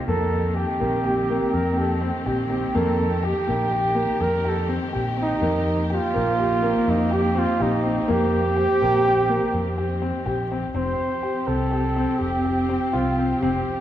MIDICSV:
0, 0, Header, 1, 6, 480
1, 0, Start_track
1, 0, Tempo, 485437
1, 72, Time_signature, 11, 3, 24, 8
1, 13650, End_track
2, 0, Start_track
2, 0, Title_t, "Flugelhorn"
2, 0, Program_c, 0, 56
2, 71, Note_on_c, 0, 69, 90
2, 542, Note_on_c, 0, 67, 79
2, 556, Note_off_c, 0, 69, 0
2, 1524, Note_on_c, 0, 70, 100
2, 1539, Note_off_c, 0, 67, 0
2, 1760, Note_off_c, 0, 70, 0
2, 1775, Note_on_c, 0, 69, 70
2, 1990, Note_off_c, 0, 69, 0
2, 2486, Note_on_c, 0, 67, 74
2, 2725, Note_on_c, 0, 69, 89
2, 2740, Note_off_c, 0, 67, 0
2, 3214, Note_on_c, 0, 67, 85
2, 3229, Note_off_c, 0, 69, 0
2, 4179, Note_on_c, 0, 70, 94
2, 4194, Note_off_c, 0, 67, 0
2, 4436, Note_on_c, 0, 69, 78
2, 4451, Note_off_c, 0, 70, 0
2, 4658, Note_off_c, 0, 69, 0
2, 5157, Note_on_c, 0, 63, 86
2, 5819, Note_off_c, 0, 63, 0
2, 5871, Note_on_c, 0, 65, 106
2, 6821, Note_on_c, 0, 63, 86
2, 6836, Note_off_c, 0, 65, 0
2, 7047, Note_on_c, 0, 67, 81
2, 7062, Note_off_c, 0, 63, 0
2, 7303, Note_on_c, 0, 65, 93
2, 7317, Note_off_c, 0, 67, 0
2, 7535, Note_on_c, 0, 63, 85
2, 7549, Note_off_c, 0, 65, 0
2, 8021, Note_on_c, 0, 67, 112
2, 8036, Note_off_c, 0, 63, 0
2, 10167, Note_off_c, 0, 67, 0
2, 10629, Note_on_c, 0, 72, 87
2, 11345, Note_on_c, 0, 69, 86
2, 11360, Note_off_c, 0, 72, 0
2, 12050, Note_on_c, 0, 67, 77
2, 12065, Note_off_c, 0, 69, 0
2, 12771, Note_off_c, 0, 67, 0
2, 12777, Note_on_c, 0, 65, 81
2, 13255, Note_on_c, 0, 67, 79
2, 13270, Note_off_c, 0, 65, 0
2, 13650, Note_off_c, 0, 67, 0
2, 13650, End_track
3, 0, Start_track
3, 0, Title_t, "Clarinet"
3, 0, Program_c, 1, 71
3, 71, Note_on_c, 1, 60, 105
3, 5052, Note_off_c, 1, 60, 0
3, 5348, Note_on_c, 1, 58, 115
3, 10350, Note_off_c, 1, 58, 0
3, 10610, Note_on_c, 1, 60, 112
3, 13650, Note_off_c, 1, 60, 0
3, 13650, End_track
4, 0, Start_track
4, 0, Title_t, "Grand piano"
4, 0, Program_c, 2, 0
4, 79, Note_on_c, 2, 58, 78
4, 404, Note_off_c, 2, 58, 0
4, 558, Note_on_c, 2, 67, 67
4, 720, Note_off_c, 2, 67, 0
4, 792, Note_on_c, 2, 58, 68
4, 957, Note_off_c, 2, 58, 0
4, 1031, Note_on_c, 2, 67, 73
4, 1196, Note_off_c, 2, 67, 0
4, 1284, Note_on_c, 2, 58, 79
4, 1608, Note_off_c, 2, 58, 0
4, 1756, Note_on_c, 2, 67, 62
4, 1920, Note_off_c, 2, 67, 0
4, 1992, Note_on_c, 2, 60, 66
4, 2157, Note_off_c, 2, 60, 0
4, 2233, Note_on_c, 2, 67, 74
4, 2398, Note_off_c, 2, 67, 0
4, 2472, Note_on_c, 2, 60, 62
4, 2637, Note_off_c, 2, 60, 0
4, 2716, Note_on_c, 2, 58, 91
4, 3044, Note_off_c, 2, 58, 0
4, 3195, Note_on_c, 2, 67, 74
4, 3360, Note_off_c, 2, 67, 0
4, 3435, Note_on_c, 2, 58, 65
4, 3600, Note_off_c, 2, 58, 0
4, 3673, Note_on_c, 2, 67, 67
4, 3838, Note_off_c, 2, 67, 0
4, 3905, Note_on_c, 2, 58, 72
4, 4237, Note_off_c, 2, 58, 0
4, 4395, Note_on_c, 2, 67, 66
4, 4560, Note_off_c, 2, 67, 0
4, 4634, Note_on_c, 2, 60, 69
4, 4799, Note_off_c, 2, 60, 0
4, 4875, Note_on_c, 2, 67, 69
4, 5040, Note_off_c, 2, 67, 0
4, 5110, Note_on_c, 2, 60, 59
4, 5277, Note_off_c, 2, 60, 0
4, 5357, Note_on_c, 2, 58, 76
4, 5684, Note_off_c, 2, 58, 0
4, 5834, Note_on_c, 2, 67, 73
4, 5999, Note_off_c, 2, 67, 0
4, 6073, Note_on_c, 2, 58, 72
4, 6238, Note_off_c, 2, 58, 0
4, 6320, Note_on_c, 2, 67, 61
4, 6483, Note_off_c, 2, 67, 0
4, 6552, Note_on_c, 2, 58, 78
4, 6881, Note_off_c, 2, 58, 0
4, 7032, Note_on_c, 2, 67, 65
4, 7197, Note_off_c, 2, 67, 0
4, 7269, Note_on_c, 2, 60, 73
4, 7435, Note_off_c, 2, 60, 0
4, 7514, Note_on_c, 2, 67, 79
4, 7678, Note_off_c, 2, 67, 0
4, 7749, Note_on_c, 2, 60, 56
4, 7915, Note_off_c, 2, 60, 0
4, 7990, Note_on_c, 2, 58, 91
4, 8319, Note_off_c, 2, 58, 0
4, 8469, Note_on_c, 2, 67, 74
4, 8635, Note_off_c, 2, 67, 0
4, 8719, Note_on_c, 2, 58, 67
4, 8881, Note_off_c, 2, 58, 0
4, 8945, Note_on_c, 2, 67, 63
4, 9112, Note_off_c, 2, 67, 0
4, 9188, Note_on_c, 2, 58, 68
4, 9517, Note_off_c, 2, 58, 0
4, 9669, Note_on_c, 2, 67, 68
4, 9835, Note_off_c, 2, 67, 0
4, 9906, Note_on_c, 2, 60, 69
4, 10072, Note_off_c, 2, 60, 0
4, 10144, Note_on_c, 2, 67, 73
4, 10311, Note_off_c, 2, 67, 0
4, 10398, Note_on_c, 2, 60, 61
4, 10560, Note_off_c, 2, 60, 0
4, 10626, Note_on_c, 2, 60, 66
4, 10955, Note_off_c, 2, 60, 0
4, 11103, Note_on_c, 2, 67, 66
4, 11270, Note_off_c, 2, 67, 0
4, 11347, Note_on_c, 2, 60, 56
4, 11513, Note_off_c, 2, 60, 0
4, 11584, Note_on_c, 2, 67, 63
4, 11751, Note_off_c, 2, 67, 0
4, 11830, Note_on_c, 2, 60, 71
4, 12159, Note_off_c, 2, 60, 0
4, 12309, Note_on_c, 2, 67, 61
4, 12474, Note_off_c, 2, 67, 0
4, 12550, Note_on_c, 2, 60, 66
4, 12715, Note_off_c, 2, 60, 0
4, 12788, Note_on_c, 2, 65, 77
4, 12954, Note_off_c, 2, 65, 0
4, 13038, Note_on_c, 2, 60, 59
4, 13200, Note_off_c, 2, 60, 0
4, 13275, Note_on_c, 2, 60, 81
4, 13602, Note_off_c, 2, 60, 0
4, 13650, End_track
5, 0, Start_track
5, 0, Title_t, "String section"
5, 0, Program_c, 3, 48
5, 0, Note_on_c, 3, 51, 66
5, 81, Note_on_c, 3, 58, 56
5, 84, Note_on_c, 3, 67, 68
5, 5325, Note_off_c, 3, 58, 0
5, 5377, Note_on_c, 3, 60, 62
5, 10600, Note_off_c, 3, 51, 0
5, 10602, Note_off_c, 3, 67, 0
5, 10604, Note_off_c, 3, 60, 0
5, 10644, Note_on_c, 3, 67, 67
5, 10646, Note_on_c, 3, 60, 57
5, 10649, Note_on_c, 3, 53, 60
5, 13650, Note_off_c, 3, 53, 0
5, 13650, Note_off_c, 3, 60, 0
5, 13650, Note_off_c, 3, 67, 0
5, 13650, End_track
6, 0, Start_track
6, 0, Title_t, "Picked electric bass"
6, 0, Program_c, 4, 34
6, 79, Note_on_c, 4, 41, 93
6, 640, Note_off_c, 4, 41, 0
6, 803, Note_on_c, 4, 34, 87
6, 1363, Note_off_c, 4, 34, 0
6, 1523, Note_on_c, 4, 41, 76
6, 2083, Note_off_c, 4, 41, 0
6, 2241, Note_on_c, 4, 34, 83
6, 2615, Note_off_c, 4, 34, 0
6, 2729, Note_on_c, 4, 41, 89
6, 3288, Note_off_c, 4, 41, 0
6, 3450, Note_on_c, 4, 34, 85
6, 4008, Note_off_c, 4, 34, 0
6, 4160, Note_on_c, 4, 41, 76
6, 4722, Note_off_c, 4, 41, 0
6, 4895, Note_on_c, 4, 34, 74
6, 5264, Note_off_c, 4, 34, 0
6, 5357, Note_on_c, 4, 41, 94
6, 5920, Note_off_c, 4, 41, 0
6, 6092, Note_on_c, 4, 34, 92
6, 6649, Note_off_c, 4, 34, 0
6, 6803, Note_on_c, 4, 41, 81
6, 7363, Note_off_c, 4, 41, 0
6, 7519, Note_on_c, 4, 34, 71
6, 7893, Note_off_c, 4, 34, 0
6, 8007, Note_on_c, 4, 41, 85
6, 8565, Note_off_c, 4, 41, 0
6, 8726, Note_on_c, 4, 34, 90
6, 9284, Note_off_c, 4, 34, 0
6, 9431, Note_on_c, 4, 41, 74
6, 9995, Note_off_c, 4, 41, 0
6, 10144, Note_on_c, 4, 34, 81
6, 10523, Note_off_c, 4, 34, 0
6, 10623, Note_on_c, 4, 29, 90
6, 10815, Note_off_c, 4, 29, 0
6, 11351, Note_on_c, 4, 36, 88
6, 11915, Note_off_c, 4, 36, 0
6, 12070, Note_on_c, 4, 29, 71
6, 12634, Note_off_c, 4, 29, 0
6, 12799, Note_on_c, 4, 36, 76
6, 13172, Note_off_c, 4, 36, 0
6, 13280, Note_on_c, 4, 29, 88
6, 13466, Note_off_c, 4, 29, 0
6, 13650, End_track
0, 0, End_of_file